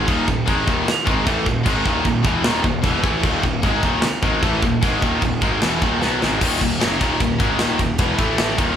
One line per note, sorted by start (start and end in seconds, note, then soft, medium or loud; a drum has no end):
0.08 0.27 D#1 medium
0.08 0.26 D#2 loud
0.08 0.26 A#2 loud
0.08 0.27 D#3 loud
0.08 kick loud
0.08 crash medium
0.27 0.46 D#1 medium
0.27 0.43 D#2 medium
0.27 0.43 A#2 medium
0.27 kick medium
0.46 0.66 G#1 medium
0.46 0.65 G#2 medium
0.46 0.65 D#3 loud
0.46 0.66 G#3 loud
0.46 kick loud
0.46 crash medium
0.66 0.85 D#1 loud
0.66 0.85 D#2 medium
0.66 0.86 A#2 loud
0.66 0.86 D#3 loud
0.66 kick loud
0.86 muted picked electric bass stroke soft
0.86 muted distorted electric guitar stroke medium
0.86 snare loud
0.86 crash medium
1.05 1.25 G#1 loud
1.05 1.24 G#2 medium
1.05 1.25 D#3 loud
1.05 1.25 G#3 loud
1.05 kick loud
1.24 1.45 A1 loud
1.24 1.44 A2 medium
1.24 1.45 E3 medium
1.24 1.45 A3 loud
1.24 kick loud
1.24 crash medium
1.44 1.65 D#1 medium
1.44 1.61 D#2 medium
1.44 1.61 A#2 medium
1.44 kick medium
1.63 1.84 G#1 loud
1.63 1.83 G#2 medium
1.63 1.83 D#3 loud
1.63 1.84 G#3 loud
1.63 kick loud
1.63 crash medium
1.83 2.04 D#1 medium
1.83 2.02 D#2 medium
1.83 2.02 A#2 medium
1.83 2.04 D#3 loud
1.83 kick loud
2.03 2.24 D#1 medium
2.03 2.20 D#2 medium
2.03 2.20 A#2 medium
2.03 kick medium
2.03 crash medium
2.23 2.43 E1 loud
2.23 2.41 E2 loud
2.23 2.42 B2 loud
2.23 2.43 E3 loud
2.23 kick loud
2.42 2.63 D#1 medium
2.42 2.61 D#2 medium
2.42 2.62 A#2 loud
2.42 2.63 D#3 loud
2.42 snare loud
2.42 crash medium
2.62 2.83 D#1 medium
2.62 2.79 D#2 medium
2.62 2.80 A#2 medium
2.62 kick loud
2.82 3.03 E1 loud
2.82 3.03 E2 loud
2.82 3.01 B2 loud
2.82 3.00 E3 loud
2.82 kick loud
2.82 crash medium
3.01 3.22 A1 loud
3.01 3.22 A2 loud
3.01 3.22 E3 medium
3.01 3.23 A3 loud
3.01 kick loud
3.05 3.24 A2 medium
3.05 3.25 A3 loud
3.23 3.42 D#1 medium
3.23 3.40 D#2 loud
3.23 3.40 A#2 loud
3.23 3.43 D#3 loud
3.23 kick loud
3.23 crash medium
3.41 3.62 D#1 medium
3.41 3.59 D#2 medium
3.41 3.59 A#2 medium
3.41 kick medium
3.62 3.82 G#1 loud
3.62 3.82 G#2 loud
3.62 3.82 D#3 loud
3.62 3.83 G#3 loud
3.62 kick loud
3.62 crash medium
3.82 4.02 D#1 medium
3.82 4.02 D#2 medium
3.82 4.02 A#2 loud
3.82 4.03 D#3 loud
3.82 kick loud
4.02 muted distorted electric guitar stroke medium
4.02 muted picked electric bass stroke soft
4.02 snare loud
4.02 crash medium
4.22 4.41 G#1 loud
4.22 4.41 G#2 medium
4.22 4.42 D#3 loud
4.22 4.42 G#3 loud
4.22 kick loud
4.42 4.61 A1 medium
4.42 4.62 A2 medium
4.42 4.62 E3 medium
4.42 4.62 A3 loud
4.42 kick loud
4.42 crash medium
4.62 4.81 D#1 medium
4.62 4.79 D#2 medium
4.62 4.79 A#2 medium
4.62 kick medium
4.81 5.01 G#1 medium
4.81 5.01 G#2 loud
4.81 5.01 D#3 loud
4.81 5.02 G#3 loud
4.81 kick loud
4.81 crash medium
5.02 5.21 D#1 loud
5.02 5.20 D#2 medium
5.02 5.20 A#2 loud
5.02 5.22 D#3 loud
5.02 kick loud
5.21 5.41 D#1 medium
5.21 5.38 D#2 medium
5.21 5.38 A#2 medium
5.21 kick medium
5.21 crash medium
5.41 5.60 G#1 loud
5.41 5.61 G#2 medium
5.41 5.61 D#3 loud
5.41 5.61 G#3 loud
5.41 kick loud
5.61 5.81 E1 loud
5.61 5.81 E2 medium
5.61 5.81 B2 loud
5.61 5.81 E3 loud
5.61 snare loud
5.61 crash medium
5.81 6.00 D#1 loud
5.81 6.01 D#2 medium
5.81 6.00 A#2 loud
5.81 6.01 D#3 loud
5.81 kick loud
6.01 6.20 B1 medium
6.01 6.19 B2 medium
6.01 6.20 F#3 medium
6.01 6.21 B3 loud
6.01 snare medium
6.20 6.40 G#1 loud
6.20 6.40 G#2 medium
6.20 6.39 D#3 loud
6.20 6.40 G#3 loud
6.20 snare loud
6.40 6.60 D#1 medium
6.40 6.58 D#2 loud
6.40 6.59 A#2 medium
6.40 6.60 D#3 loud
6.40 kick loud
6.40 crash loud
6.59 6.80 D#1 medium
6.59 6.76 D#2 medium
6.59 6.76 A#2 medium
6.59 kick medium
6.59 ride medium
6.79 6.99 F#2 medium
6.79 7.00 C#3 loud
6.79 6.99 F#3 loud
6.79 snare loud
6.79 ride loud
6.83 7.01 F#1 loud
7.00 7.19 D#1 medium
7.00 7.19 D#2 medium
7.00 7.19 A#2 loud
7.00 7.20 D#3 loud
7.00 kick loud
7.00 ride medium
7.20 7.39 D#1 medium
7.20 7.36 D#2 medium
7.20 7.36 A#2 medium
7.20 kick loud
7.20 ride loud
7.39 7.58 G#1 loud
7.39 7.59 G#2 medium
7.39 7.58 D#3 loud
7.39 7.59 G#3 loud
7.39 kick loud
7.39 ride medium
7.59 7.79 D#1 medium
7.59 7.77 D#2 medium
7.59 7.77 A#2 medium
7.59 7.79 D#3 loud
7.59 snare loud
7.59 ride medium
7.78 7.98 D#1 medium
7.78 7.95 D#2 medium
7.78 7.95 A#2 medium
7.78 kick medium
7.78 ride medium
7.98 8.18 E1 medium
7.98 8.18 E2 medium
7.98 8.18 B2 medium
7.98 8.17 E3 loud
7.98 kick loud
7.98 ride loud
8.18 8.56 A1 medium
8.18 8.57 A2 medium
8.18 8.58 E3 loud
8.18 8.58 A3 loud
8.18 kick loud
8.18 ride medium
8.38 snare loud
8.38 ride loud
8.57 8.76 D#1 loud
8.57 8.76 D#2 loud
8.57 8.76 A#2 loud
8.57 8.76 D#3 loud
8.57 kick loud
8.57 ride medium